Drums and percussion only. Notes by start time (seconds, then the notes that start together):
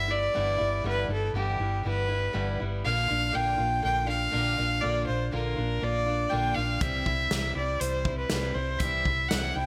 6.81 kick, closed hi-hat
7.06 kick
7.31 snare, closed hi-hat
7.81 closed hi-hat
8.05 kick
8.29 snare, closed hi-hat
8.80 kick, closed hi-hat
9.05 kick
9.31 snare, closed hi-hat